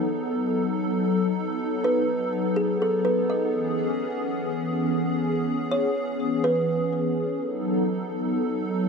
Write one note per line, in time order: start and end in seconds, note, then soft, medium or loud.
0.00 3.50 F#3 medium
0.00 7.37 B3 medium
0.00 3.50 D#4 medium
0.00 3.50 A4 medium
1.84 2.53 B4 medium
2.56 2.80 G#4 medium
2.82 3.04 A4 medium
3.05 3.28 B4 medium
3.30 3.52 D#5 medium
3.53 7.37 E3 medium
3.53 7.37 C#4 medium
3.53 7.37 G#4 medium
5.71 6.40 C#5 medium
6.44 6.89 B4 medium
7.40 8.89 F#3 medium
7.40 8.89 B3 medium
7.40 8.89 D#4 medium
7.40 8.89 A4 medium